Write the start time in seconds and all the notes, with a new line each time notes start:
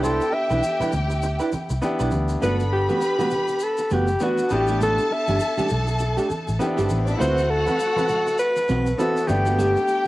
Already playing: C2 B3 D4 E4 G4 G5
0.02 D4 E4 A4 C5, muted conga, low conga, shaker
0.21 shaker
0.33 E5, muted clean electric guitar stroke
0.50 B1 D4 E4 B4, high conga, shaker
0.63 muted clean electric guitar stroke, shaker
0.80 D4 E4 B4, muted fingered electric bass stroke, high conga, low conga, shaker
0.92 D2, muted clean electric guitar stroke, low conga, shaker
1.10 muted clean electric guitar stroke, shaker
1.22 muted clean electric guitar stroke, muted conga, shaker
1.40 D4 E4 B4, shaker
1.52 muted clean electric guitar stroke, muted fingered electric bass stroke, high conga, shaker
1.70 C2, muted clean electric guitar stroke, shaker
1.82 B3 D4 E4 G4, muted clean electric guitar stroke, high conga, shaker
2.00 B1 D4 E4 B4, muted conga, shaker
2.11 D2, muted clean electric guitar stroke, high conga, shaker
2.29 muted clean electric guitar stroke, shaker
2.42 G1 A3 B3 D4 F#4 A4 B4 F#5 B5, low conga, shaker
2.60 muted conga, shaker
2.72 G4, muted clean electric guitar stroke
2.89 A3 B3 F#4, high conga, shaker
3.01 muted clean electric guitar stroke, muted conga, shaker
3.19 A3 B3 F#4, muted conga, high conga, low conga, shaker
3.30 muted clean electric guitar stroke, low conga, shaker
3.48 muted clean electric guitar stroke, shaker
3.60 A4, shaker
3.77 muted clean electric guitar stroke, shaker
3.90 F#1 A3 B3 F#4 G4, high conga, shaker
4.07 muted clean electric guitar stroke, shaker
4.20 A3 B3 D4 F#4 B4, muted conga, high conga, shaker
4.38 muted conga, shaker
4.50 A1 B3 D4 E4 F#4 G4 A4 A5, muted clean electric guitar stroke, high conga, shaker
4.60 G4
4.68 A3 D4 G4, shaker
4.81 A3 D4 A4, muted conga, low conga, shaker
4.98 shaker
5.11 E5, muted clean electric guitar stroke
5.27 G1 A3 D4 G4, high conga, shaker
5.40 muted clean electric guitar stroke, shaker
5.58 A3 D4 G4, muted fingered electric bass stroke, muted conga, high conga, low conga, shaker
5.69 B1, muted clean electric guitar stroke, low conga, shaker
5.87 muted clean electric guitar stroke, shaker
5.99 muted clean electric guitar stroke, muted conga, shaker
6.17 A3 D4 G4, shaker
6.30 muted clean electric guitar stroke, muted fingered electric bass stroke, high conga, shaker
6.47 A1, muted clean electric guitar stroke, shaker
6.59 B3 C4 E4 G4, muted clean electric guitar stroke, muted conga, high conga, shaker
6.66 D4
6.77 G1 G3 A3 D4 G4, muted conga, shaker
6.83 A3 A4
6.89 A1 B3 B4, muted clean electric guitar stroke, high conga, shaker
6.98 C4 C5
7.07 D4 D5, muted clean electric guitar stroke, shaker
7.13 E4 E5
7.18 D2 A3 C4 E4 F4 F#4 B4 C5 F#5, muted conga, low conga, shaker
7.28 F#4
7.37 muted conga, shaker
7.50 A4, muted clean electric guitar stroke
7.67 C4 F#4 B4, high conga, shaker
7.79 muted clean electric guitar stroke, muted conga, shaker
7.96 C4 F#4 B4, muted conga, high conga, low conga, shaker
8.08 muted clean electric guitar stroke, low conga, shaker
8.26 muted clean electric guitar stroke, shaker
8.38 B4, shaker
8.56 muted clean electric guitar stroke, muted conga, shaker
8.68 B1 C4 F#4 B4, high conga, shaker
8.86 muted clean electric guitar stroke, shaker
8.94 B3 B4
8.98 C4 E4 F#4 A4 B4, muted conga, high conga, shaker
9.17 shaker
9.27 G1 A3 B3 D4 G4 G5, muted clean electric guitar stroke, high conga, shaker
9.46 A3 B3 F#4, shaker
9.58 A3 B3 G4, muted conga, low conga, shaker
9.75 muted conga, shaker
9.88 muted clean electric guitar stroke, shaker